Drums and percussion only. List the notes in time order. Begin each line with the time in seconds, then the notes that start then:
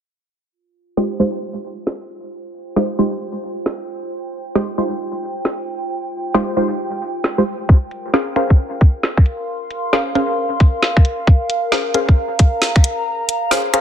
0.97 snare
1.87 snare
2.76 snare
3.66 snare
4.55 snare
5.45 snare
6.34 snare
7.24 snare
7.69 kick
7.91 closed hi-hat
8.14 snare
8.36 finger snap, closed hi-hat
8.50 kick
8.81 kick, closed hi-hat
9.03 snare
9.17 finger snap, kick
9.26 closed hi-hat
9.71 closed hi-hat
9.93 snare
10.15 closed hi-hat
10.60 kick, closed hi-hat
10.83 snare
10.97 finger snap, kick
11.05 closed hi-hat
11.27 kick
11.50 closed hi-hat
11.72 snare
11.94 closed hi-hat
12.09 kick
12.39 kick, closed hi-hat
12.62 snare
12.76 finger snap, kick
12.84 closed hi-hat
13.29 closed hi-hat
13.51 snare
13.74 finger snap, closed hi-hat